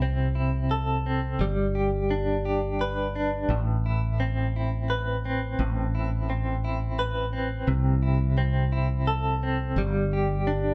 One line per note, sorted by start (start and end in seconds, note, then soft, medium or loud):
0.00 1.35 C2 medium
0.00 1.40 C3 medium
0.00 1.05 C4 medium
0.00 0.34 E4 soft
0.35 1.46 E4 soft
0.71 1.47 A4 medium
1.06 1.47 C4 soft
1.39 3.45 G1 medium
1.39 3.50 G3 medium
1.75 2.44 G4 soft
2.11 3.14 D4 soft
2.45 3.57 G4 soft
2.81 4.23 B4 medium
3.16 3.57 D4 soft
3.49 5.55 A1 medium
3.49 5.59 A2 medium
3.86 4.56 E4 soft
4.20 5.25 C4 soft
4.56 5.94 E4 soft
4.90 6.98 B4 medium
5.25 6.29 C4 soft
5.59 7.63 A1 medium
5.59 7.67 A2 medium
5.95 6.64 E4 soft
6.30 7.33 C4 soft
6.64 8.02 E4 medium
6.99 7.75 B4 medium
7.33 8.37 C4 soft
7.67 9.73 C2 medium
7.67 9.77 C3 medium
8.02 8.71 E4 soft
8.38 9.42 C4 soft
8.72 9.84 E4 medium
9.07 9.84 A4 medium
9.43 9.84 C4 soft
9.76 10.74 G1 medium
9.76 10.74 G3 medium
10.13 10.74 G4 soft
10.47 10.74 D4 soft